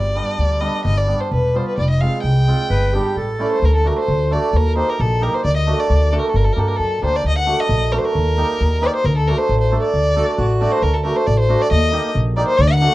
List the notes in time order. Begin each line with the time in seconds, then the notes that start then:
Already playing: G1 D5
0.15 G3 B3 D4
0.38 D2
0.60 G3 B3 D4 D#5
0.85 G1 D#5
0.97 D5
1.07 G3 B3 D4
1.21 C5
1.31 E1 B4
1.54 G3 B3 F4 C5
1.68 B4
1.78 F1 D5
1.90 D#5
2.01 G#3 C4 F4 F5
2.23 C2 G5
2.47 G#3 C4 F4
2.70 G1 B4
2.93 G3 B3 D4 G4
3.16 A1 A4
3.38 A3 C#4 E4 D5
3.52 C5
3.62 D2 A#4
3.76 A4
3.84 A3 D4 F#4 A#4
3.99 C5
4.08 D2
4.30 A3 D4 F#4 D5
4.53 D#2 A#4
4.75 A#3 D#4 G4 C5
4.89 A#4
5.00 A#1 A4
5.21 A#3 D#4 G4 A#4
5.35 C5
5.45 D2 D5
5.57 D#5
5.67 A3 D4 F#4
5.80 D5
5.90 D2
6.12 A3 D4 F#4 A4
6.19 A#4
6.29 A4
6.34 G1 A#4
6.45 A4
6.53 G2 A#3 D4 A#4
6.58 G4 A4
6.68 A#4
6.76 F#2 A4
7.01 D2 A#3 D4 G4 C5
7.16 D5
7.24 D2 D#5
7.38 F#5
7.46 A3 D4 F#4
7.60 D#5
7.69 A#1
7.92 A3 D4 F#4 A#4
7.98 C5
8.05 A#4
8.15 D#2
8.37 A#3 D#4 G4
8.61 D#2
8.81 A#3 D#4 G4 D5
8.96 C5
9.04 D2 A#4
9.17 A4
9.27 A3 D4 F#4 A#4
9.38 C5
9.49 A1
9.60 C5
9.71 A3 D4 A4
9.83 D5
9.94 D2
10.15 A3 D4 F#4 A4
10.38 A1 F#4
10.60 A3 D4 F#4 D5
10.72 C5
10.82 D2 A#4
10.94 A4
11.04 A3 D4 F#4 A#4
11.16 C5
11.27 A1 D5
11.40 C5
11.49 A3 D4 F#4
11.62 D5
11.71 D#2 D#5
11.92 A#3 D#4 G4
12.15 A#1
12.36 A#3 D#4 G4 D5
12.48 C5
12.58 D2 D5
12.68 F#5
12.78 A3 D4 F#4 F#5